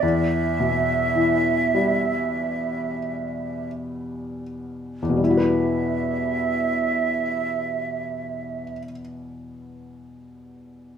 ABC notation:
X:1
M:4/4
L:1/8
Q:1/4=42
K:Em
V:1 name="Flute"
e6 z2 | e8 |]
V:2 name="Felt piano" clef=bass
E,, B,, E, G,4 z | [E,,B,,G,EFB]8 |]